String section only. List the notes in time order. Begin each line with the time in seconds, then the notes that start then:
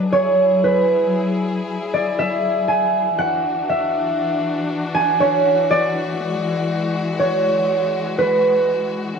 Already playing: F#3
0.12 E4 G#4
3.17 E3 D4 F#4
6.20 G#3